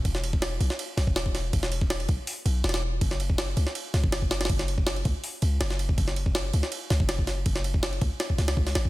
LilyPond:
<<
  \new Staff \with { instrumentName = "808-style bass" } { \clef bass \time 4/4 \key fis \phrygian \tempo 4 = 162 e,,4. b,,16 r8. b,,16 e,,4~ e,,16 | e,,4. b,,16 r8. b,,8 e,,4 | fis,,4. cis,16 r8. cis,16 fis,,4~ fis,,16 | fis,,4. cis,16 r8. cis,8 fis,,4 |
fis,,4. cis,16 r8. cis,16 fis,,4~ fis,,16 | fis,,4. cis,16 r8. cis,8 cis,8 a,,8 | }
  \new DrumStaff \with { instrumentName = "Drums" } \drummode { \time 4/4 <bd cymr>16 sn16 cymr16 bd16 <cymr sn>8 cymr16 sn16 cymr8 <cymr sn>16 bd16 <cymr sn>16 bd16 <cymr sn>8 | <bd cymr>16 sn16 cymr16 bd16 <cymr sn>16 cymr16 <bd cymr>8 hho8 cymr8 <cymr sn>32 <cymr sn>32 <cymr sn>8. | <bd cymr>16 sn16 cymr16 bd16 <cymr sn>8 cymr16 sn16 cymr8 <cymr sn>16 bd16 <cymr sn>16 bd16 <cymr sn>16 <cymr sn>32 <cymr sn>32 | <bd cymr>16 sn16 cymr16 bd16 <cymr sn>16 cymr16 <bd cymr>8 hho8 cymr8 <cymr sn>16 sn16 cymr16 bd16 |
<bd cymr>16 sn16 cymr16 bd16 <cymr sn>8 cymr16 sn16 cymr8 <cymr sn>16 bd16 <cymr sn>16 bd16 <cymr sn>8 | <bd cymr>16 sn16 cymr16 bd16 <cymr sn>16 cymr16 <bd cymr>8 <cymr sn>16 bd16 <cymr sn>16 <cymr sn>16 bd16 <cymr sn>16 <cymr sn>16 bd16 | }
>>